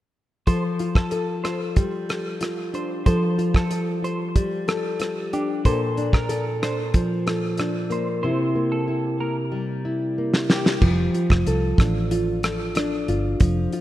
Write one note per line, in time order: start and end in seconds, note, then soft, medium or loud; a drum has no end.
0.47 3.06 F3 medium
0.47 1.11 A4 medium
0.47 0.63 C5 medium
0.47 kick medium
0.47 closed hi-hat medium
0.79 1.44 F4 medium
0.79 closed hi-hat soft
0.95 1.26 A4 medium
0.95 kick medium
0.95 cross-stick medium
1.11 2.09 A4 medium
1.11 closed hi-hat medium
1.44 2.40 F4 soft
1.44 1.59 C5 medium
1.44 cross-stick medium
1.44 closed hi-hat medium
1.76 4.34 G3 medium
1.76 kick medium
1.76 closed hi-hat medium
2.09 3.07 A4 medium
2.09 cross-stick medium
2.09 closed hi-hat soft
2.41 3.38 F4 medium
2.41 cross-stick medium
2.41 closed hi-hat medium
2.73 5.33 D4 medium
2.73 2.90 C5 medium
2.73 closed hi-hat soft
3.06 6.56 F3 medium
3.06 3.70 A4 medium
3.06 3.21 C5 medium
3.06 kick medium
3.06 closed hi-hat medium
3.38 4.02 F4 soft
3.38 closed hi-hat soft
3.54 3.86 A4 medium
3.54 kick medium
3.54 cross-stick medium
3.71 4.67 A4 medium
3.71 closed hi-hat medium
4.02 4.99 F4 soft
4.02 4.19 C5 medium
4.02 closed hi-hat medium
4.35 5.71 G3 medium
4.35 kick medium
4.35 closed hi-hat medium
4.68 5.65 A4 soft
4.68 cross-stick medium
4.68 closed hi-hat soft
5.00 5.97 F4 soft
5.00 cross-stick medium
5.00 closed hi-hat medium
5.33 5.98 D4 medium
5.33 5.48 G4 medium
5.33 closed hi-hat soft
5.65 8.24 A#2 medium
5.65 6.28 A4 medium
5.65 5.81 C5 medium
5.65 kick medium
5.65 closed hi-hat medium
5.97 6.61 D4 medium
5.97 closed hi-hat soft
6.13 6.44 A#4 medium
6.13 kick medium
6.13 cross-stick medium
6.29 7.25 A4 medium
6.29 closed hi-hat medium
6.62 7.58 D4 soft
6.62 6.78 C5 medium
6.62 cross-stick medium
6.62 closed hi-hat medium
6.94 8.30 F3 medium
6.94 kick medium
6.94 closed hi-hat medium
7.26 8.30 A4 soft
7.26 cross-stick medium
7.26 closed hi-hat soft
7.58 8.24 D4 soft
7.58 cross-stick medium
7.58 closed hi-hat medium
7.90 8.55 A#3 medium
7.90 8.07 C5 medium
7.90 closed hi-hat soft
8.23 10.81 C3 medium
8.23 8.87 E4 medium
8.23 8.39 C5 medium
8.55 9.19 A#3 soft
8.72 9.03 A4 medium
8.88 9.84 E4 medium
9.20 10.17 A#3 soft
9.20 9.36 A#4 medium
9.52 10.50 G3 medium
9.85 10.88 E4 medium
10.18 10.89 A#3 medium
10.34 snare medium
10.50 11.17 G3 medium
10.50 10.66 G4 medium
10.50 snare medium
10.66 snare medium
10.81 11.08 F1 medium
10.81 13.40 F3 medium
10.81 kick medium
10.81 crash medium
11.14 12.11 F4 medium
11.14 closed hi-hat soft
11.30 11.43 F1 medium
11.30 kick medium
11.30 cross-stick medium
11.47 11.72 C2 medium
11.47 12.44 A4 medium
11.47 closed hi-hat medium
11.78 13.04 A1 medium
11.78 12.76 D4 soft
11.78 kick medium
11.78 cross-stick medium
11.78 closed hi-hat medium
12.11 13.08 F4 medium
12.11 closed hi-hat medium
12.43 13.81 A4 medium
12.43 cross-stick medium
12.43 closed hi-hat soft
12.75 13.81 D4 medium
12.75 cross-stick medium
12.75 closed hi-hat medium
13.08 13.34 G1 medium
13.08 13.73 F4 medium
13.08 closed hi-hat soft
13.40 13.66 F1 medium
13.40 13.81 F3 medium
13.40 kick medium
13.40 closed hi-hat medium
13.73 13.81 F4 soft
13.73 closed hi-hat soft